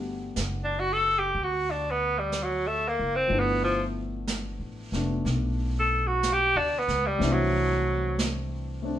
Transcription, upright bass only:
Already playing: G1
0.37 F#1
1.35 D2
2.99 F#1
3.30 G1
4.59 A1
4.92 F1
5.25 B1
6.55 D2
6.88 C#2
7.20 C2

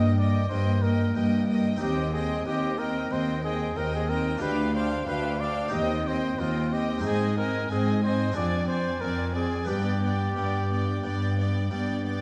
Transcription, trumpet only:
Already playing: D#5
0.18 D5
0.49 C5
0.82 A#4
1.81 G4
2.13 G#4
2.46 G4
2.78 A#4
3.13 C5
3.44 G#4
3.77 A#4
3.95 G#4
4.09 A#4
4.42 B4
4.75 C5
5.08 B4
5.40 D5
5.74 D#5
6.07 C5
6.40 F4
6.73 G4
7.05 G#4
7.38 A#4
7.72 G#4
8.03 C5
8.36 D5
8.68 C5
9.01 A#4
9.35 G#4
9.68 G4

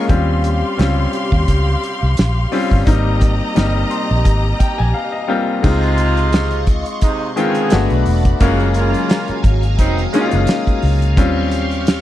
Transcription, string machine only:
5.65 F4 D#5 C6 C#6
7.70 A3 D5 F#5 B5
8.40 F#3 F5 G#5 A#5
11.17 G4 C6 C#6

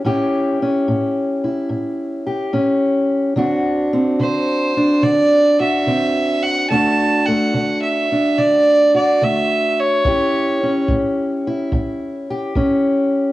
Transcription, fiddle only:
4.20 C5
5.03 D5
5.60 E5
6.43 F#5
6.70 A5
7.25 F#5
7.81 E5
8.38 D5
8.96 D5
9.23 E5
9.79 C#5

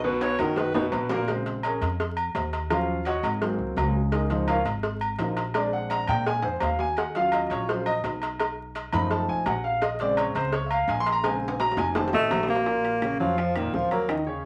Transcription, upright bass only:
Already playing: B1
0.39 F#2
0.93 A#1
1.81 F2
2.35 D#2
3.23 G#1
3.58 C2
3.76 C#2
4.65 G#1
5.19 A#1
6.08 A#2
6.43 F2
6.61 D#2
7.50 A#1
8.04 B1
8.93 F#2
9.28 B1
9.46 A#1
10.35 C#2
10.88 A#1
11.77 F1
12.12 A1
12.30 A#1
13.19 F2
13.73 D#2

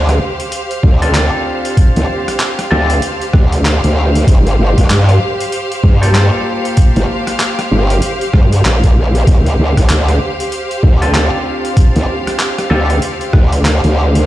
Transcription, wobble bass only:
Already playing: D2
0.83 D2
1.97 D2
2.71 D2
3.34 D2
3.84 D2
4.27 G1
4.59 G1
4.78 G1
4.90 G2
5.83 G2
6.96 G1
7.71 G1
8.34 G2
8.65 A#1
9.27 D2
9.59 D2
9.77 D2
9.90 D2
10.83 D2
11.96 D2
12.70 D2
13.33 D2
13.84 D2

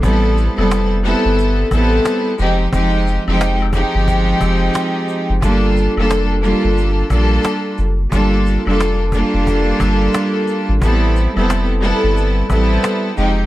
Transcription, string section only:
0.02 G3 B3 C4 E4 A4
0.57 G3 B3 C4 E4 A4
1.03 G3 B3 C4 E4 A4
1.71 G3 B3 C4 E4 A4
2.37 F3 G#3 C4 D#4 G4
2.71 F3 G#3 C4 D#4 G4
3.27 F3 G#3 C4 D#4 G4
3.74 F3 G#3 C4 D#4 G4
5.41 G3 A#3 D4 F4 A4
5.97 G3 A#3 D4 F4 A4
6.42 G3 A#3 D4 F4 A4
7.10 G3 A#3 D4 F4 A4
8.12 G3 A#3 D4 F4 A4
8.66 G3 A#3 D4 F4 A4
9.13 G3 A#3 D4 F4 A4
10.81 G3 B3 C4 E4 A4
11.35 G3 B3 C4 E4 A4
11.81 G3 B3 C4 E4 A4
12.49 G3 B3 C4 E4 A4
13.16 F3 G#3 C4 D#4 G4

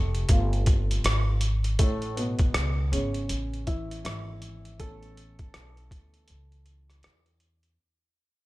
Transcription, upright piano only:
Already playing: C3 A3
0.30 A3 B3 F4
1.79 A2 A3
2.16 B2 B3
2.92 C#3 B3 C#4 G#4
3.67 E3 E4
4.05 E3 E4
4.79 E3 A3 B3 C#4 A4

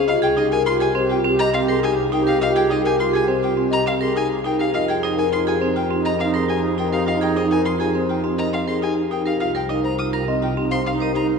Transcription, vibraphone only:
Already playing: C5
0.08 F4
0.22 G#4
0.37 D#4
0.66 F4
0.80 G#4
0.95 C4
1.10 F4
1.24 C4
1.39 A#4
1.54 C4
1.68 A#4
1.83 D#4
2.12 D#4
2.27 A#4
2.41 F4
2.56 G#4
2.70 D#4
2.99 F4
3.14 G#4
3.28 C4
3.43 F4
3.57 C4
3.72 A#4
3.86 C4
4.01 A#4
4.15 D#4
4.45 D#4
4.59 A#4
4.74 F4
4.88 G#4
5.03 D#4
5.32 F4
5.47 G#4
5.61 C4
5.76 F4
5.90 C4
6.05 A#4
6.19 C4
6.34 A#4
6.49 D#4
6.78 D#4
6.93 A#4
7.07 F4
7.21 G#4
7.36 D#4
7.65 F4
7.80 G#4
7.95 C4
8.09 F4
8.24 C4
8.38 A#4
8.53 C4
8.68 A#4
8.82 D#4
9.11 D#4
9.26 A#4
9.40 F4
9.55 A#4
9.69 D#4
9.99 F4
10.13 A#4
10.28 C4
10.42 F4
10.57 C4
10.72 C5
10.86 C4
11.00 C5
11.15 D#4

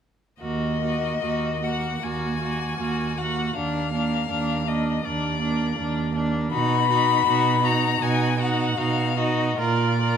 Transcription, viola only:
0.42 A#3
0.82 A#3
1.23 A#3
1.63 A#3
2.03 A#3
2.41 A#3
2.80 A#3
3.18 A#3
3.56 A#3
3.93 A#3
4.31 A#3
4.68 A#3
5.04 A#3
5.41 A#3
5.78 A#3
6.15 A#3
6.52 D#4
6.89 D#4
7.27 D#4
7.63 D#4
8.01 D#4
8.40 D#4
8.78 D#4
9.17 D#4
9.59 F4
10.01 F4

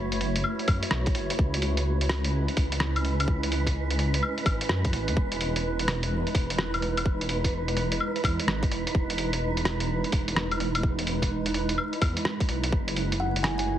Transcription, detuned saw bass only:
Already playing: F#1
0.68 F#2
0.91 B1
1.15 F#1
1.39 C#2
2.33 C#2
2.57 C#2
3.27 C#2
4.46 G#1
4.69 F#2
4.93 G#1
5.08 E2
5.16 E1
6.10 E1
6.34 E1
7.05 E1
8.24 E2
8.47 G#1
8.71 E1
8.95 E1
9.89 E1
10.13 E1
10.83 E1
12.01 E2
12.48 B1
12.72 F#1
13.66 F#1

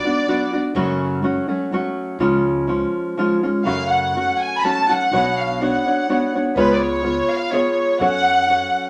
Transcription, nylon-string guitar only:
0.05 B3 D4 F#4
0.27 F#3 B3 D4 F#4
0.53 B3 D4 F#4
0.75 F#2 C#3 F#3 A3 C#4 F#4
1.22 F#3 A3 C#4 F#4
1.48 F#3 A3 C#4 F#4
1.72 F#3 A3 C#4 F#4
2.20 C#3 F3 G#3 C#4 F4
2.67 F3 G#3 C#4 F4
3.17 F3 G#3 C#4 F4
3.43 G#3 C#4 F4
3.65 F#2 C#3 F#3 A3 C#4 F#4
4.15 F#3 A3 C#4 F#4
4.64 F#3 A3 C#4 F#4
4.89 F#3 A3 C#4 F#4
5.12 B2 F#3 B3 D4 F#4 C#5
5.60 B3 D4 F#4 C#5
5.86 B3 D4 F#4 C#5
6.09 B3 D4 F#4 C#5
6.35 B3 D4 F#4 C#5
6.57 C#3 G#3 B3 F4 G#4 C#5
7.03 B3 F4 G#4 C#5
7.52 B3 F4 G#4 C#5
8.00 F#3 C#4 F#4 A4 C#5
8.49 C#4 F#4 A4 C#5

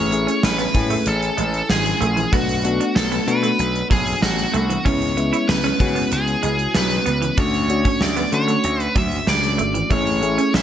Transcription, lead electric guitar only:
Already playing: C#5
0.44 B4
1.08 A4
1.70 G#4
2.33 F#4
2.96 A4
3.28 B4
3.91 G#4
4.22 F#4
4.86 C#5
5.49 B4
6.13 G#4
6.77 B4
7.40 C#5
8.03 D5
8.34 C#5
8.83 B4
8.98 E5
9.29 D5
9.92 C#5
10.55 E5

